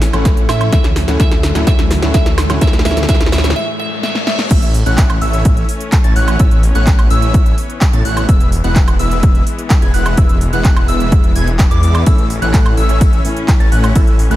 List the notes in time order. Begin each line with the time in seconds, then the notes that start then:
Already playing: A1 A2 E3 A3 C#4 E4, riser
0.02 snare, open hi-hat
0.12 A1 A2 E3 A3 C#4 E4 C#5 F#5, closed hi-hat, high woodblock
0.25 kick, snare, closed hi-hat
0.37 closed hi-hat
0.49 A2 A3 C#4 E4 C#5 E5, snare, open hi-hat, high woodblock
0.61 closed hi-hat, high woodblock
0.72 D2 A2 D3 E3 F#3 A3 C#4 E4 E5, kick, snare, closed hi-hat
0.84 snare, closed hi-hat
0.96 snare, open hi-hat
1.07 D2 A2 E3 A3 C#4 E4 C#5 F#5, snare, closed hi-hat
1.19 D2 A2 E3 A3 C#4 E4 E5, kick, snare, closed hi-hat
1.32 snare, closed hi-hat
1.43 snare, open hi-hat
1.54 D2 A2 E3 A3 C#4 E4 C#5 F#5, snare, closed hi-hat
1.67 D2 A2 E3 A3 C#4 E4 C#5 E5, kick, snare, closed hi-hat
1.79 snare, closed hi-hat
1.91 snare, open hi-hat
2.01 D2 A2 E3 A3 C#4 E4 C#5 F#5, snare, closed hi-hat
2.14 D2 A2 E3 A3 E4 E5, kick, snare, closed hi-hat
2.26 snare, closed hi-hat
2.38 snare, open hi-hat, high woodblock
2.49 D2 A2 E3 A3 C#4 E4 C#5 F#5, snare, closed hi-hat, high woodblock
2.61 D2 A2 E3 G#3 A3 C#4 C#5 E5, kick, snare, closed hi-hat
2.67 snare
2.73 snare, closed hi-hat
2.79 snare
2.85 D2 A2 E3 A3 C#4 E4 C#5 E5, snare, open hi-hat
2.91 snare
2.97 snare, closed hi-hat
3.03 snare
3.08 D2 A2 E3 A3 C#4 E4 C#5 E5, kick, snare, closed hi-hat
3.15 snare
3.21 snare, closed hi-hat
3.26 snare
3.32 D2 A2 E3 A3 C#4 E4 C#5 E5, snare, open hi-hat
3.38 snare
3.44 snare, closed hi-hat
3.50 snare
3.56 E5, reverse cymbal
3.80 E5
4.03 E5, snare
4.15 snare
4.27 E5, snare
4.39 snare
4.51 A1 E3 A3 C#4 E4 C#5 E5 E6, kick, closed hi-hat, crash
4.62 closed hi-hat
4.74 open hi-hat
4.86 A1 A3 C#4 E4 C#5 F#5 F#6, closed hi-hat
4.98 kick, clap, closed hi-hat
5.10 closed hi-hat, high woodblock
5.22 A1 A3 C#4 E4 C#5 E5 E6, open hi-hat
5.33 closed hi-hat
5.45 kick, closed hi-hat
5.57 closed hi-hat
5.69 open hi-hat
5.81 closed hi-hat
5.92 kick, clap, closed hi-hat
6.04 A1 A3 C#4 E4 C#5 A5 A6, closed hi-hat
6.16 A1 A3 C#4 E4 C#5 F#5 F#6, open hi-hat
6.28 closed hi-hat, high woodblock
6.40 A1 A3 B3 C#4 E4 C#5 E5 E6, kick, closed hi-hat
6.51 closed hi-hat
6.63 open hi-hat
6.75 A1 A3 C#4 E4 C#5 F#5 F#6, closed hi-hat
6.87 kick, clap, closed hi-hat
6.99 closed hi-hat, high woodblock
7.10 A1 A3 C#4 E4 C#5 E5 E6, open hi-hat
7.22 closed hi-hat
7.34 kick, closed hi-hat
7.46 closed hi-hat
7.58 open hi-hat
7.70 closed hi-hat
7.81 kick, clap, closed hi-hat
7.93 A2 A3 C#4 E4 C#5 A5 A6, closed hi-hat
8.05 A1 A3 C#4 E4 C#5 F#5 F#6, open hi-hat
8.17 closed hi-hat, high woodblock
8.29 E1 G#3 B3 E4 B4 E5 E6, kick, closed hi-hat
8.40 closed hi-hat
8.52 open hi-hat
8.64 E1 G#3 B3 E4 B4 F#5 F#6, closed hi-hat
8.76 kick, clap, closed hi-hat
8.88 closed hi-hat, high woodblock
8.99 E1 G#3 B3 E4 B4 E5 E6, open hi-hat
9.11 closed hi-hat
9.23 kick, closed hi-hat
9.35 closed hi-hat
9.47 open hi-hat
9.59 closed hi-hat
9.70 kick, clap, closed hi-hat
9.82 E1 G#3 B3 E4 B4 G#5 G#6, closed hi-hat
9.94 E1 G#3 B3 E4 B4 F#5 F#6, open hi-hat
10.06 closed hi-hat, high woodblock
10.17 E1 G#3 B3 E4 B4 E5 E6, kick, closed hi-hat
10.29 closed hi-hat
10.41 open hi-hat
10.53 E1 G#3 B3 E4 B4 F#5 F#6, closed hi-hat
10.64 kick, clap, closed hi-hat
10.77 closed hi-hat, high woodblock
10.88 E1 G#3 B3 E4 B4 E5 E6, open hi-hat
11.00 closed hi-hat
11.12 kick, closed hi-hat
11.24 closed hi-hat
11.36 E1 G#3 B3 E4 B4 G#5 G#6, open hi-hat
11.47 closed hi-hat
11.59 kick, clap, closed hi-hat
11.71 E2 G#3 B3 E4 B4 D5 D6, closed hi-hat
11.83 open hi-hat
11.95 closed hi-hat, high woodblock
12.06 A1 A2 E3 A3 C#4 E4 E6, kick, closed hi-hat, ride
12.18 closed hi-hat
12.30 open hi-hat
12.41 A1 A2 E3 A3 C#4 E4 C#5 F#5 F#6, closed hi-hat
12.54 kick, clap, closed hi-hat, ride
12.66 closed hi-hat, high woodblock
12.77 A1 A3 C#4 E4 C#5 E5 E6, open hi-hat
12.89 closed hi-hat
13.01 kick, closed hi-hat, ride
13.13 closed hi-hat
13.24 A2 E3 A3 C#4 E4, open hi-hat
13.37 closed hi-hat
13.48 kick, clap, closed hi-hat, ride
13.60 A1 A3 C#4 E4 C#5 A5 A6, closed hi-hat
13.72 A1 A3 C#4 E4 C#5 F#5 F#6, open hi-hat
13.84 closed hi-hat, high woodblock
13.95 A1 A2 E3 A3 B3 C#4 E4 C#5 E5 E6, kick, closed hi-hat, ride
14.07 closed hi-hat
14.19 open hi-hat
14.30 A1 A2 E3 A3 C#4 E4 C#5 F#5 F#6, closed hi-hat